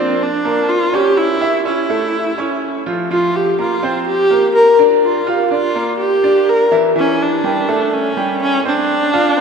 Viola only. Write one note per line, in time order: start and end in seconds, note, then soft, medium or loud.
0.00 0.24 C4 medium
0.22 0.70 D4 loud
0.68 0.96 F4 loud
0.94 1.19 G4 loud
1.17 1.65 E4 loud
1.66 2.82 E4 medium
3.12 3.38 F4 medium
3.36 3.59 G4 medium
3.60 4.04 F4 medium
4.07 4.52 G4 loud
4.55 4.77 A#4 loud
5.03 5.29 F4 medium
5.28 5.50 G4 medium
5.51 5.96 F4 medium
5.98 6.50 G4 loud
6.49 6.72 A#4 loud
6.98 7.24 C#4 loud
7.23 7.95 D4 medium
7.93 8.41 C#4 loud
8.42 8.64 C#4 loud
8.67 9.41 D4 loud